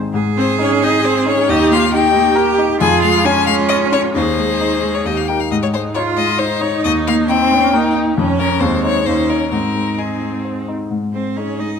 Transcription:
Already playing: grand piano G#1 G#2 C4 D#4 G#4
0.14 grand piano G#2, cello G#4
0.36 grand piano C4, viola C4, violin C5
0.59 viola C#4, grand piano D#4, violin C#5
0.81 grand piano C4, viola D#4, violin D#5
1.02 viola C4, grand piano G#4, violin C5
1.26 viola C#4, grand piano D#4, violin C#5
1.49 grand piano D#2, viola D#4, cello G4, violin D#5
1.70 grand piano A#3, viola F4, violin F5
1.92 cello D#4, grand piano D#4, viola G4, violin G5
2.14 grand piano A#3
2.35 cello G4, grand piano A#4
2.58 grand piano D#4
2.80 grand piano F2, cello F4, viola G#4, violin G#5
3.02 grand piano G#3, violin F5
3.24 cello C#4, grand piano C#4, viola F4, violin G#5
3.47 grand piano G#3, violin F5
3.69 grand piano C#5, violin D#5
3.92 grand piano C#4, violin C#5
4.15 grand piano D#2, cello D#4, viola G#4, violin C5
4.37 grand piano G#3
4.61 grand piano D#4
4.83 grand piano G#3
4.94 violin C#5
5.05 grand piano D#2, viola G4, violin D#5
5.17 violin F5
5.28 grand piano D#4 A#4, violin G5
5.40 violin F5
5.51 grand piano G#2, viola D#4, violin D#5
5.63 violin C#5
5.74 grand piano G#3, violin C5
5.95 grand piano D#4, cello F4, viola F4, violin C#5
6.17 grand piano G#3, violin D#5
6.39 cello D#4, viola D#4, violin C5, grand piano C5
6.61 grand piano D#4, violin C#5
6.84 grand piano D#2, viola D#4, violin D#5
7.07 grand piano A#3, violin F5
7.28 cello C4, viola C4, grand piano D#4, violin G5
7.52 grand piano A#3, viola C#4
7.72 cello A#3, viola D#4, grand piano A#4
7.95 grand piano D#4
8.16 grand piano F2, cello C#4, viola C#4
8.39 grand piano C#4 C#5, violin A#4
8.60 grand piano D#2, viola G#3, cello C4, violin C5
8.83 grand piano D#4 C5, violin C#5
9.04 grand piano D#2, viola C#4, cello D#4, violin C5
9.29 grand piano D#4 C#5, violin A#4
9.50 grand piano G#2, viola C4, cello D#4, violin A#4
9.74 grand piano G#3
9.98 viola C4, grand piano D#4, violin G#4
10.21 grand piano G#3
10.45 grand piano C5
10.68 grand piano D#4
10.91 grand piano G#2
11.13 grand piano G#3, cello C4, violin C5
11.37 cello C#4, grand piano D#4, viola G#4, violin C#5
11.59 grand piano G#3, cello D#4, violin D#5

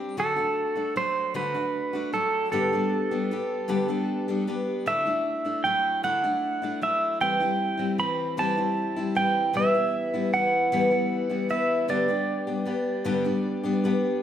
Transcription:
Already playing: steel-string acoustic guitar G3 C4 D4 G4
0.17 steel-string acoustic guitar D3 F#3 A3 D4 F#4, pedal steel guitar A4
0.36 steel-string acoustic guitar A3 D4 F#4
0.75 steel-string acoustic guitar A3 D4 F#4
0.96 steel-string acoustic guitar F#3 A3 D4 F#4, pedal steel guitar C5
1.34 steel-string acoustic guitar D3 F#3 A3 D4 F#4, pedal steel guitar B4
1.54 steel-string acoustic guitar A3 D4 F#4
1.93 steel-string acoustic guitar A3 D4 F#4
2.13 steel-string acoustic guitar F#3 A3 D4 F#4, pedal steel guitar A4
2.52 steel-string acoustic guitar G2 D3 G3 B3 D4 G4, pedal steel guitar A4
2.73 steel-string acoustic guitar G3 B3 D4 G4
3.11 steel-string acoustic guitar G3 B3 D4 G4
3.31 steel-string acoustic guitar G3 B3 D4 G4
3.68 steel-string acoustic guitar G2 D3 G3 B3 D4 G4
3.88 steel-string acoustic guitar G3 B3 D4 G4
4.28 steel-string acoustic guitar G3 B3 D4 G4
4.47 steel-string acoustic guitar G3 B3 D4 G4
4.86 steel-string acoustic guitar D3 F#3 A3 D4 E4, pedal steel guitar E5
5.05 steel-string acoustic guitar A3 D4 E4
5.45 steel-string acoustic guitar A3 D4 E4
5.64 steel-string acoustic guitar F#3 A3 D4 E4, pedal steel guitar G5
6.03 steel-string acoustic guitar D3 F#3 A3 D4 E4, pedal steel guitar F#5
6.24 steel-string acoustic guitar A3 D4 E4
6.62 steel-string acoustic guitar A3 D4 E4
6.82 steel-string acoustic guitar F#3 A3 D4 E4, pedal steel guitar E5
7.21 steel-string acoustic guitar E3 G3 C4 E4, pedal steel guitar G5
7.40 steel-string acoustic guitar G3 C4 E4
7.77 steel-string acoustic guitar G3 C4 E4
7.98 steel-string acoustic guitar E3 G3 C4 E4, pedal steel guitar B5
8.37 steel-string acoustic guitar E3 G3 C4 E4, pedal steel guitar A5
8.57 steel-string acoustic guitar G3 C4 E4
8.96 steel-string acoustic guitar G3 C4 E4
9.15 steel-string acoustic guitar E3 G3 C4 E4, pedal steel guitar G5
9.53 steel-string acoustic guitar E2 B2 E3 G3 B3 E4, pedal steel guitar E5
9.74 steel-string acoustic guitar E3 G3 B3 E4
10.14 steel-string acoustic guitar E3 G3 B3 E4
10.33 steel-string acoustic guitar E3 G3 B3 E4, pedal steel guitar F#5
10.72 steel-string acoustic guitar E2 B2 E3 G3 B3 E4
10.90 steel-string acoustic guitar E3 G3 B3 E4
11.30 steel-string acoustic guitar E3 G3 B3 E4
11.49 steel-string acoustic guitar E3 G3 B3 E4, pedal steel guitar E5
11.88 steel-string acoustic guitar G2 D3 G3 B3 D4 G4, pedal steel guitar D5
12.08 steel-string acoustic guitar G3 B3 D4 G4
12.47 steel-string acoustic guitar G3 B3 D4 G4
12.65 steel-string acoustic guitar G3 B3 D4 G4
13.05 steel-string acoustic guitar G2 D3 G3 B3 D4 G4
13.24 steel-string acoustic guitar G3 B3 D4 G4
13.63 steel-string acoustic guitar G3 B3 D4 G4
13.84 steel-string acoustic guitar G3 B3 D4 G4

